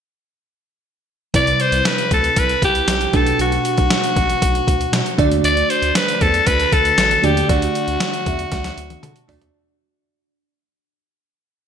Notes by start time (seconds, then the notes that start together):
1.34 C2 C3 G3 C4 E4 B4 D5, kick, closed hi-hat
1.47 closed hi-hat
1.60 C5, closed hi-hat
1.72 C2, closed hi-hat
1.85 B4, snare, closed hi-hat
1.98 closed hi-hat
2.11 D2 A4, kick, closed hi-hat
2.24 closed hi-hat
2.36 C2 B4, kick, closed hi-hat
2.49 closed hi-hat
2.62 C2 G4, kick, closed hi-hat
2.75 closed hi-hat
2.87 B1, snare, closed hi-hat
3.01 closed hi-hat
3.13 B1 B2 A3 D4 F#4 A4 B4, kick, closed hi-hat
3.27 closed hi-hat
3.39 B1 F#4, closed hi-hat
3.52 closed hi-hat
3.65 closed hi-hat
3.78 B1, kick, closed hi-hat
3.90 snare, closed hi-hat
4.04 closed hi-hat
4.16 A1, kick, closed hi-hat
4.30 closed hi-hat
4.42 B1, kick, closed hi-hat
4.55 closed hi-hat
4.68 D2, kick, closed hi-hat
4.81 closed hi-hat
4.92 B2, snare, closed hi-hat
5.06 closed hi-hat
5.18 D2 D3 A3 D4 F#4 D5, kick, closed hi-hat
5.31 D#2, closed hi-hat
5.44 D2 D5, closed hi-hat
5.57 closed hi-hat
5.70 C5, closed hi-hat
5.82 D2, closed hi-hat
5.95 B4, snare, closed hi-hat
6.08 closed hi-hat
6.21 E2 A4, kick, closed hi-hat
6.34 closed hi-hat
6.47 D2 B4, kick, closed hi-hat
6.60 closed hi-hat
6.72 D2 A4, kick, closed hi-hat
6.85 closed hi-hat
6.98 A1, snare, closed hi-hat
7.11 closed hi-hat
7.23 D#2 D3 A3 D4 F#4 G4 D5, closed hi-hat
7.37 closed hi-hat
7.48 D2 A3 D4 F#4 D5, kick, closed hi-hat
7.62 closed hi-hat
7.75 closed hi-hat
7.88 D2, closed hi-hat
8.00 snare, closed hi-hat
8.14 closed hi-hat
8.26 E2 E5, kick, closed hi-hat
8.39 closed hi-hat
8.51 D2 F#5, kick, snare, closed hi-hat
8.64 snare, closed hi-hat
8.77 D2, closed hi-hat
8.90 closed hi-hat, high tom
9.03 D3 A5, closed hi-hat, mid tom
9.16 closed hi-hat
9.28 D2 A3 D4 F#4 D5, floor tom, open hi-hat
9.42 D#2, closed hi-hat, floor tom